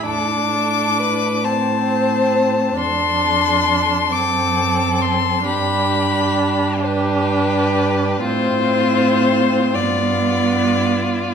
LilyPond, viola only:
\new Staff \with { instrumentName = "Viola" } { \time 6/8 \key g \mixolydian \tempo 4. = 44 d'4. c'4. | d'4. c'4. | d'4. d'4. | c'4. b4. | }